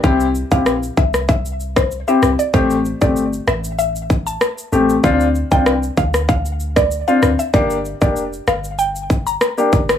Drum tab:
SH |xxxxxxxxxxxxxxxx|xxxxxxxxxxxxxxxx|xxxxxxxxxxxxxxxx|xxxxxxxxxxxxxxxx|
SD |----r--r---r--r-|------r-----r---|----r--r---r--r-|------r-----r--r|
BD |o--o--o-o--o----|o--o------o-----|o--o--o-o--o----|o--o------o---o-|